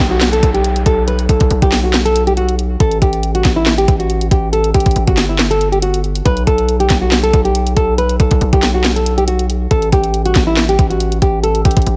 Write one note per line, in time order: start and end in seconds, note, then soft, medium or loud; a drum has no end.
0.00 0.41 B1 loud
0.00 kick loud
0.00 snare medium
0.00 clap medium
0.00 downlifter medium
0.11 0.28 F#4 medium
0.21 snare loud
0.21 clap medium
0.21 closed hi-hat medium
0.33 0.49 A4 medium
0.33 closed hi-hat medium
0.43 0.84 B1 loud
0.43 kick loud
0.43 closed hi-hat medium
0.54 0.84 G4 medium
0.54 closed hi-hat soft
0.64 closed hi-hat medium
0.76 closed hi-hat medium
0.86 1.27 B1 loud
0.86 1.03 A4 medium
0.86 kick loud
0.86 closed hi-hat medium
1.08 1.24 B4 medium
1.08 closed hi-hat medium
1.19 closed hi-hat medium
1.29 1.40 B1 loud
1.29 1.60 A4 medium
1.29 kick medium
1.29 closed hi-hat medium
1.40 1.50 B1 loud
1.40 kick loud
1.40 closed hi-hat soft
1.51 1.62 B1 loud
1.51 closed hi-hat medium
1.62 2.76 B1 loud
1.62 1.79 G4 medium
1.62 kick medium
1.62 closed hi-hat medium
1.72 snare medium
1.72 clap medium
1.72 open hi-hat medium
1.84 2.01 F#4 medium
1.94 snare loud
1.94 clap medium
1.94 closed hi-hat medium
2.05 2.22 A4 medium
2.05 closed hi-hat medium
2.16 closed hi-hat medium
2.27 2.35 G4 medium
2.27 closed hi-hat soft
2.37 2.54 F#4 medium
2.37 closed hi-hat medium
2.49 closed hi-hat medium
2.59 closed hi-hat medium
2.80 3.01 A1 loud
2.80 2.97 A4 medium
2.80 kick loud
2.80 closed hi-hat medium
2.91 closed hi-hat medium
3.02 3.43 A1 loud
3.02 3.33 G4 medium
3.02 kick medium
3.02 closed hi-hat medium
3.13 closed hi-hat medium
3.23 closed hi-hat medium
3.35 3.52 F#4 medium
3.35 closed hi-hat medium
3.45 3.86 A1 loud
3.45 kick medium
3.45 snare medium
3.45 clap medium
3.45 closed hi-hat medium
3.56 3.73 E4 medium
3.66 snare loud
3.66 clap medium
3.66 closed hi-hat medium
3.78 3.95 G4 medium
3.78 closed hi-hat medium
3.88 4.30 A1 loud
3.88 kick loud
3.88 closed hi-hat medium
3.99 4.29 F#4 medium
3.99 closed hi-hat soft
4.10 closed hi-hat medium
4.21 closed hi-hat medium
4.31 4.73 A1 loud
4.31 4.48 G4 medium
4.31 kick loud
4.31 closed hi-hat medium
4.53 4.70 A4 medium
4.53 closed hi-hat medium
4.64 closed hi-hat medium
4.74 4.85 A1 loud
4.74 5.05 G4 medium
4.74 kick medium
4.74 closed hi-hat medium
4.80 closed hi-hat medium
4.86 4.95 A1 loud
4.86 kick loud
4.86 closed hi-hat medium
4.91 closed hi-hat soft
4.96 5.07 A1 loud
4.96 closed hi-hat medium
5.07 6.22 G1 loud
5.07 5.24 F#4 medium
5.07 kick medium
5.07 closed hi-hat medium
5.17 snare medium
5.17 clap medium
5.17 open hi-hat medium
5.29 5.46 E4 medium
5.39 snare loud
5.39 clap medium
5.39 closed hi-hat medium
5.51 5.67 A4 medium
5.51 closed hi-hat medium
5.61 closed hi-hat medium
5.72 5.80 G4 medium
5.72 closed hi-hat soft
5.82 5.99 F#4 medium
5.82 closed hi-hat medium
5.94 closed hi-hat medium
6.04 closed hi-hat soft
6.15 closed hi-hat medium
6.25 6.46 B1 loud
6.25 6.42 B4 medium
6.25 kick loud
6.25 closed hi-hat medium
6.37 closed hi-hat medium
6.47 6.89 B1 loud
6.47 6.78 A4 medium
6.47 kick loud
6.47 closed hi-hat medium
6.58 closed hi-hat medium
6.69 closed hi-hat medium
6.80 6.97 G4 medium
6.80 closed hi-hat medium
6.90 7.32 B1 loud
6.90 kick loud
6.90 snare medium
6.90 clap medium
6.90 closed hi-hat medium
7.02 7.19 F#4 medium
7.12 snare loud
7.12 clap medium
7.12 closed hi-hat medium
7.23 7.40 A4 medium
7.23 closed hi-hat medium
7.33 7.75 B1 loud
7.33 kick loud
7.33 closed hi-hat medium
7.45 7.75 G4 medium
7.45 closed hi-hat soft
7.55 closed hi-hat medium
7.67 closed hi-hat medium
7.77 8.18 B1 loud
7.77 7.93 A4 medium
7.77 kick loud
7.77 closed hi-hat medium
7.98 8.15 B4 medium
7.98 closed hi-hat medium
8.09 closed hi-hat medium
8.20 8.31 B1 loud
8.20 8.51 A4 medium
8.20 kick medium
8.20 closed hi-hat medium
8.31 8.41 B1 loud
8.31 kick loud
8.31 closed hi-hat medium
8.41 8.52 B1 loud
8.41 closed hi-hat medium
8.53 9.67 B1 loud
8.53 8.70 G4 medium
8.53 kick medium
8.53 closed hi-hat medium
8.63 snare medium
8.63 clap medium
8.63 open hi-hat medium
8.74 8.91 F#4 medium
8.84 snare loud
8.84 clap medium
8.84 closed hi-hat medium
8.96 9.13 A4 medium
8.96 closed hi-hat medium
9.06 closed hi-hat medium
9.18 9.26 G4 medium
9.18 closed hi-hat soft
9.28 9.45 F#4 medium
9.28 closed hi-hat medium
9.39 closed hi-hat medium
9.50 closed hi-hat medium
9.71 9.92 A1 loud
9.71 9.88 A4 medium
9.71 kick loud
9.71 closed hi-hat medium
9.82 closed hi-hat medium
9.92 10.34 A1 loud
9.92 10.24 G4 medium
9.92 kick medium
9.92 closed hi-hat medium
10.04 closed hi-hat medium
10.14 closed hi-hat medium
10.26 10.42 F#4 medium
10.26 closed hi-hat medium
10.35 10.77 A1 loud
10.35 kick loud
10.35 snare medium
10.35 clap medium
10.35 closed hi-hat medium
10.47 10.64 E4 medium
10.57 snare loud
10.57 clap medium
10.57 closed hi-hat medium
10.69 10.86 G4 medium
10.69 closed hi-hat medium
10.79 11.20 A1 loud
10.79 kick loud
10.79 closed hi-hat medium
10.90 11.20 F#4 medium
10.90 closed hi-hat soft
11.00 closed hi-hat medium
11.12 closed hi-hat medium
11.22 11.63 A1 loud
11.22 11.39 G4 medium
11.22 kick loud
11.22 closed hi-hat medium
11.43 11.60 A4 medium
11.43 closed hi-hat medium
11.55 closed hi-hat medium
11.65 11.76 A1 loud
11.65 11.96 G4 medium
11.65 kick medium
11.65 closed hi-hat medium
11.71 closed hi-hat medium
11.77 11.86 A1 loud
11.77 kick loud
11.77 closed hi-hat medium
11.82 closed hi-hat soft
11.86 11.96 A1 loud
11.86 closed hi-hat medium